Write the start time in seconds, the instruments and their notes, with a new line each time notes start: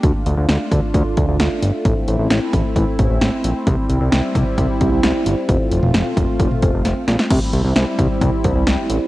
0.03 analog synth bass D2, analog synth pad A3 D4 F4, kick, closed hi-hat
0.26 analog synth bass D2, closed hi-hat
0.37 analog synth bass D2
0.49 analog synth bass D2, snare, closed hi-hat
0.71 analog synth bass D2, kick, closed hi-hat
0.94 analog synth bass D2, kick, closed hi-hat
1.17 analog synth bass D2, kick, closed hi-hat
1.28 analog synth bass D2
1.40 analog synth bass D2, snare, closed hi-hat
1.62 analog synth bass G1, closed hi-hat
1.85 analog synth bass A1, analog synth pad C4 E4, kick, closed hi-hat
2.08 analog synth bass A1, closed hi-hat
2.19 analog synth bass A1
2.30 analog synth bass A1, snare, closed hi-hat
2.53 analog synth bass A1, kick, closed hi-hat
2.76 analog synth bass A1, kick, closed hi-hat
2.99 analog synth bass A1, kick, closed hi-hat
3.10 analog synth bass A1
3.21 analog synth bass A1, snare, closed hi-hat
3.44 analog synth bass A#1, closed hi-hat
3.67 analog synth bass C2, analog synth pad G3 E4, kick, closed hi-hat
3.90 analog synth bass C2, closed hi-hat
4.01 analog synth bass C2
4.12 analog synth bass C2, snare, closed hi-hat
4.35 analog synth bass C2, kick, closed hi-hat
4.58 analog synth bass C2, kick, closed hi-hat
4.81 analog synth bass C2, kick, closed hi-hat
4.92 analog synth bass C2
5.03 analog synth bass C2, snare, closed hi-hat
5.26 analog synth bass G1, closed hi-hat
5.49 analog synth bass F1, analog synth pad A3 F4, kick, closed hi-hat
5.72 analog synth bass F1, closed hi-hat
5.83 analog synth bass F1, mid tom
5.94 analog synth bass F1, snare, closed hi-hat
6.17 analog synth bass F1, kick, closed hi-hat
6.40 analog synth bass F1, kick, closed hi-hat
6.51 mid tom
6.62 analog synth bass F1, kick, closed hi-hat
6.74 analog synth bass F1
6.85 analog synth bass F1, snare, closed hi-hat
7.08 analog synth bass A#1, snare, closed hi-hat
7.19 snare
7.31 analog synth bass C2, analog synth pad G3 C4 E4, kick, closed hi-hat, crash
7.53 analog synth bass C2, closed hi-hat
7.65 analog synth bass C2
7.76 analog synth bass C2, snare, closed hi-hat
7.99 analog synth bass C2, kick, closed hi-hat
8.21 analog synth bass C2, kick, closed hi-hat
8.44 analog synth bass C2, kick, closed hi-hat
8.56 analog synth bass C2
8.67 analog synth bass C2, snare, closed hi-hat
8.90 analog synth bass A1, closed hi-hat